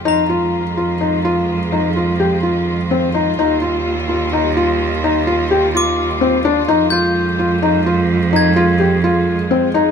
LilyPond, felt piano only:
\new Staff \with { instrumentName = "Felt piano" } { \time 7/4 \key f \dorian \tempo 4 = 127 ees'8 f'4 f'8 ees'8 f'4 ees'8 f'8 g'8 f'4 c'8 ees'8 | ees'8 f'4 f'8 ees'8 f'4 ees'8 f'8 g'8 f'4 c'8 d'8 | ees'8 f'4 f'8 ees'8 f'4 ees'8 f'8 g'8 f'4 c'8 ees'8 | }